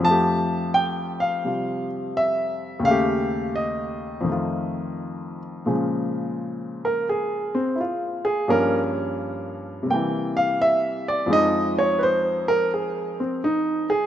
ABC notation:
X:1
M:4/4
L:1/8
Q:"Swing" 1/4=85
K:F
V:1 name="Grand piano"
a2 g f2 z e2 | f2 _e4- e z | [K:Bbm] z3 B A C [=EF] A | B z3 =g f =e =d |
e d [_c=c] B A C E A |]
V:2 name="Grand piano" clef=bass
[F,,F,A,G]4 [C,G,F]4 | [_E,,_D,A,G]4 [F,,_E,A,F]4 | [K:Bbm] [B,,D,F,A,]8 | [=G,,F,B,D]4 [C,=E,=G,B,]4 |
[F,,F,A,E]8 |]